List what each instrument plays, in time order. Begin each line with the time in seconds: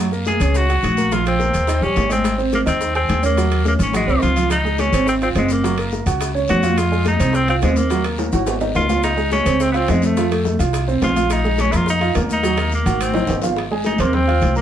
Already playing: upright bass F#2
0.11 grand piano A#3 A#4, high bongo, high conga, maracas
0.25 tenor saxophone G#4, high bongo, high conga, high timbale, short guiro, maracas
0.40 upright bass C#2, grand piano C#4 C#5, high bongo, high conga, high timbale, short guiro, maracas
0.54 tenor saxophone F#4, high bongo, high conga, long guiro, maracas
0.69 grand piano F#4 F#5, high bongo, high conga, high timbale, maracas
0.83 upright bass A#1, high bongo, low bongo, high conga, high timbale, short guiro, maracas
0.97 grand piano A#3 A#4, high conga, short guiro, maracas
1.12 grand piano F3 F4, tenor saxophone F4, high bongo, high conga, high timbale, long guiro, maracas
1.26 tenor saxophone C4, high bongo, high timbale, maracas
1.39 grand piano A#3 A#4, high bongo, high conga, short guiro, maracas
1.53 upright bass D#2, high bongo, high timbale, short guiro, maracas
1.67 grand piano D#4 D#5, high bongo, high conga, high timbale, long guiro, maracas
1.81 upright bass A#1, grand piano G3 G4, tenor saxophone C#4, high bongo, high conga, maracas
1.96 upright bass G#1, high bongo, low bongo, high conga, high timbale, low timbale, short guiro, maracas
2.10 grand piano G#3 G#4, tenor saxophone C4, high conga, high timbale, short guiro, maracas
2.24 high bongo, high conga, high timbale, long guiro, maracas
2.38 grand piano C4 C5, high bongo, high conga, maracas
2.52 tenor saxophone A#3, high bongo, high conga, high timbale, short guiro, maracas
2.66 upright bass D#2, tenor saxophone C4, grand piano D#4 D#5, high bongo, high timbale, short guiro, maracas
2.81 high bongo, high conga, long guiro, maracas
2.95 tenor saxophone C4, grand piano G#4 G#5, high bongo, high conga, high timbale, maracas
3.08 upright bass D#2, high bongo, low bongo, high conga, high timbale, short guiro, maracas
3.23 tenor saxophone A#3, grand piano C#4 C#5, high conga, short guiro, maracas
3.37 grand piano F#3 F#4, high bongo, high conga, high timbale, long guiro, maracas
3.51 high bongo, high timbale, maracas
3.65 tenor saxophone A#3, grand piano C#4 C#5, high bongo, high conga, short guiro, maracas
3.79 upright bass G#1, tenor saxophone C#4, high bongo, high conga, high timbale, short guiro, maracas
3.93 tenor saxophone G#3, grand piano F#4 F#5, high bongo, low conga, high timbale, long guiro, maracas
4.07 upright bass C2, grand piano C4 C5, high bongo, low conga, maracas
4.22 upright bass C#2, tenor saxophone F4, high bongo, low bongo, low conga, high timbale, short guiro, maracas
4.36 grand piano F3 F4, low conga, high timbale, short guiro, maracas
4.50 tenor saxophone D#4, high bongo, high conga, high timbale, long guiro, maracas
4.64 grand piano G#3 G#4, high bongo, high conga, maracas
4.78 tenor saxophone C#4, high bongo, high conga, high timbale, short guiro, maracas
4.92 upright bass G#1, grand piano C4 C5, high bongo, high conga, high timbale, short guiro, maracas
5.06 tenor saxophone C4, high bongo, high conga, long guiro, maracas
5.21 tenor saxophone C4, grand piano F4 F5, high bongo, high conga, high timbale, maracas
5.35 upright bass F#1, tenor saxophone G#3, grand piano C4 C5, high bongo, low bongo, high conga, high timbale, short guiro, maracas
5.49 tenor saxophone A#3, high conga, short guiro, maracas
5.63 grand piano F#3 F#4, high bongo, high conga, high timbale, long guiro, maracas
5.78 grand piano A#3 A#4, high bongo, high conga, high timbale, maracas
5.91 high bongo, high conga, short guiro, maracas
6.06 upright bass C#2, grand piano F#4 F#5, high bongo, high timbale, short guiro, maracas
6.20 high bongo, high conga, high timbale, long guiro, maracas
6.35 grand piano C#4 C#5, high bongo, high conga, maracas
6.48 upright bass F2, tenor saxophone F#4, high bongo, low bongo, high conga, high timbale, low timbale, short guiro, maracas
6.62 grand piano F4 F5, high conga, high timbale, short guiro, maracas
6.76 tenor saxophone F4, high bongo, high conga, high timbale, long guiro, maracas
6.91 grand piano G#3 G#4, high bongo, high conga, maracas
7.05 tenor saxophone D#4, high bongo, high conga, high timbale, short guiro, maracas
7.20 upright bass C2, grand piano C4 C5, high bongo, high timbale, short guiro, maracas
7.33 tenor saxophone C4, high bongo, high conga, long guiro, maracas
7.48 tenor saxophone C4, grand piano F4 F5, high bongo, high conga, high timbale, maracas
7.62 upright bass D#2, tenor saxophone G#3, grand piano C4 C5, high bongo, low bongo, high conga, high timbale, low timbale, short guiro, maracas
7.76 tenor saxophone A#3, high conga, short guiro, maracas
7.90 grand piano F#3 F#4, high bongo, high conga, high timbale, long guiro, maracas
8.04 grand piano A#3 A#4, high bongo, high timbale, maracas
8.18 high bongo, high conga, high timbale, short guiro, maracas
8.32 upright bass G#1, grand piano F#4 F#5, high bongo, high timbale, short guiro, maracas
8.47 high bongo, high conga, low timbale, long guiro, maracas
8.61 grand piano D#4 D#5, high bongo, high conga, low timbale, maracas
8.75 upright bass C#2, tenor saxophone F4, high bongo, low bongo, high conga, low timbale, short guiro, maracas
8.89 grand piano F4 F5, high conga, low timbale, short guiro, maracas
9.03 tenor saxophone D#4, high bongo, high conga, high timbale, long guiro, maracas
9.17 grand piano G#3 G#4, high bongo, high conga, maracas
9.31 tenor saxophone C#4, high bongo, high conga, high timbale, short guiro, maracas
9.45 upright bass C#2, grand piano C4 C5, high bongo, high conga, high timbale, short guiro, maracas
9.60 tenor saxophone C4, high bongo, long guiro, maracas
9.72 tenor saxophone B3, grand piano F4 F5, high bongo, high conga, high timbale, maracas
9.77 tenor saxophone C4
9.88 upright bass F2, tenor saxophone G#3, grand piano C4 C5, high bongo, low bongo, high conga, high timbale, low timbale, short guiro, maracas
10.02 tenor saxophone A3, high conga, short guiro, maracas
10.17 grand piano F3 F4, high bongo, high timbale, long guiro, maracas
10.31 grand piano A3 A4, high bongo, high timbale, maracas
10.45 high bongo, high conga, short guiro, maracas
10.59 upright bass C2, grand piano F4 F5, high bongo, high timbale, short guiro, maracas
10.73 high bongo, high conga, high timbale, long guiro, maracas
10.88 grand piano C4 C5, high bongo, high conga, maracas
11.01 upright bass A#1, tenor saxophone F4, high bongo, low bongo, high conga, high timbale, low timbale, short guiro, maracas
11.16 grand piano F4 F5, high conga, high timbale, short guiro, maracas
11.30 tenor saxophone D#4, high bongo, high conga, high timbale, long guiro, maracas
11.44 grand piano G#3 G#4, high bongo, maracas
11.58 tenor saxophone C#4, high bongo, high conga, high timbale, short guiro, maracas
11.72 upright bass F2, grand piano A#3 A#4, tenor saxophone E4, high bongo, high conga, high timbale, short guiro, maracas
11.76 tenor saxophone F4
11.86 tenor saxophone D#4, high bongo, high conga, long guiro, maracas
12.00 grand piano F4 F5, high bongo, high conga, high timbale, maracas
12.15 upright bass D#2, grand piano A#3 A#4, high bongo, low bongo, high conga, high timbale, low timbale, short guiro, maracas
12.29 tenor saxophone D#4, high conga, short guiro, maracas
12.43 grand piano F#3 F#4, high bongo, high timbale, long guiro, maracas
12.57 grand piano A#3 A#4, high bongo, high timbale, maracas
12.72 tenor saxophone A#3, high conga, short guiro, maracas
12.86 upright bass G#1, grand piano F#4 F#5, high conga, high timbale, short guiro, maracas
13.00 tenor saxophone C4, high conga, high timbale, long guiro, maracas
13.13 grand piano D#4 D#5, low bongo, low conga, high timbale, maracas
13.27 upright bass G#1, low bongo, low timbale, short guiro, maracas
13.42 grand piano F4 F5, low bongo, low conga, low timbale, short guiro, maracas
13.56 high bongo, high conga, high timbale, long guiro
13.71 grand piano G#3 G#4 G#5, high bongo
13.84 tenor saxophone D#4, high bongo, high conga, high timbale, short guiro
13.98 upright bass D#2, tenor saxophone A#3, grand piano C4 C5 C6, high bongo, high conga, low conga, high timbale, short guiro
14.13 tenor saxophone C4, high bongo, high conga, low conga, long guiro
14.27 grand piano F4 F5 F6, high bongo, high conga, high timbale
14.41 upright bass C2, high bongo, low bongo, high conga, high timbale, short guiro
14.55 grand piano A#3 A#4 A#5, tenor saxophone A#3, high conga, short guiro